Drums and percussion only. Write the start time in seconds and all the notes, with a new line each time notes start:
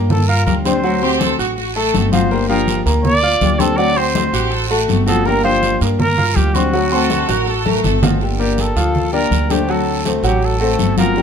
0.10 high conga, low conga, long guiro
0.29 high conga
0.47 high conga, short guiro
0.65 high conga, short guiro
0.84 high conga, long guiro
1.03 high conga
1.21 high conga, short guiro
1.39 high conga, short guiro
1.58 high conga, long guiro
1.76 high conga
1.94 high conga, short guiro
2.13 high conga, short guiro
2.31 high conga, long guiro
2.49 high conga
2.68 high conga, short guiro
2.87 high conga, short guiro
3.05 high conga, low conga, long guiro
3.24 high conga
3.41 high conga, short guiro
3.60 high conga, short guiro
3.78 high conga, long guiro
3.97 high conga
4.15 high conga, short guiro
4.33 high conga, short guiro
4.52 high conga, long guiro
4.70 high conga
4.89 high conga, short guiro
5.08 high conga, short guiro
5.25 high conga, long guiro
5.44 high conga
5.63 high conga, short guiro
5.81 high conga, short guiro
5.99 high conga, low conga, long guiro
6.18 high conga, low conga
6.36 high conga, short guiro
6.55 high conga, short guiro
6.73 high conga, long guiro
6.92 high conga
7.10 high conga, short guiro
7.29 high conga, short guiro
7.47 long guiro
7.66 high conga
7.84 low conga, short guiro
8.03 low conga, short guiro
8.21 high conga, long guiro
8.40 high conga
8.58 high conga, short guiro
8.77 high conga, short guiro
8.95 high conga, low conga, long guiro
9.14 high conga
9.31 high conga, short guiro
9.50 high conga, short guiro
9.69 high conga, long guiro
9.88 high conga
10.05 high conga, short guiro
10.24 high conga, short guiro
10.42 high conga, long guiro
10.61 high conga
10.79 high conga, short guiro
10.97 high conga, short guiro
11.16 long guiro